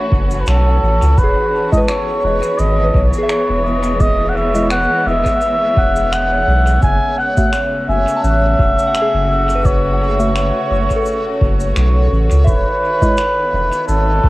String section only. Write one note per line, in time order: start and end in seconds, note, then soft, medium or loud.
0.00 1.16 E3 medium
0.00 1.18 A3 medium
0.00 2.58 C#4 medium
0.00 3.45 F#4 medium
1.17 6.82 E3 medium
1.81 9.09 B3 medium
3.72 8.51 G#3 medium
6.82 12.47 C#3 medium
7.31 14.29 F#4 medium
7.68 12.47 A3 medium
12.47 14.29 D#3 medium
13.42 14.29 B3 medium